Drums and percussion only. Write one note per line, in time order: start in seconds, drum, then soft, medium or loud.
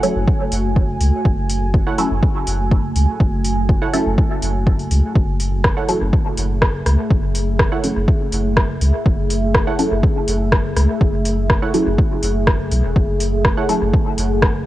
0.03 open hi-hat medium
0.28 kick loud
0.52 open hi-hat medium
0.76 kick loud
1.01 open hi-hat medium
1.25 kick loud
1.49 open hi-hat medium
1.74 kick loud
1.98 open hi-hat medium
2.23 kick loud
2.47 open hi-hat medium
2.71 kick loud
2.96 open hi-hat medium
3.20 kick loud
3.45 open hi-hat medium
3.69 kick loud
3.93 open hi-hat medium
4.18 kick loud
4.42 open hi-hat medium
4.67 kick loud
4.79 open hi-hat soft
4.91 open hi-hat medium
5.15 kick loud
5.40 open hi-hat medium
5.64 kick loud
5.64 cross-stick medium
5.89 open hi-hat medium
6.13 kick loud
6.37 open hi-hat medium
6.62 kick loud
6.62 cross-stick medium
6.86 cross-stick soft
6.86 open hi-hat medium
7.11 kick loud
7.35 open hi-hat medium
7.59 kick loud
7.59 cross-stick medium
7.84 open hi-hat medium
8.08 kick loud
8.33 open hi-hat medium
8.57 kick loud
8.57 cross-stick medium
8.81 open hi-hat medium
9.06 kick loud
9.30 open hi-hat medium
9.54 kick loud
9.54 cross-stick medium
9.79 open hi-hat medium
10.03 kick loud
10.28 open hi-hat medium
10.52 kick loud
10.52 cross-stick medium
10.76 cross-stick soft
10.76 open hi-hat medium
11.01 kick loud
11.25 open hi-hat medium
11.50 kick loud
11.50 cross-stick medium
11.74 open hi-hat medium
11.98 kick loud
12.23 open hi-hat medium
12.47 kick loud
12.47 cross-stick medium
12.71 open hi-hat medium
12.96 kick loud
13.20 open hi-hat medium
13.45 kick loud
13.45 cross-stick medium
13.69 open hi-hat medium
13.93 kick loud
14.18 open hi-hat medium
14.42 kick loud
14.42 cross-stick medium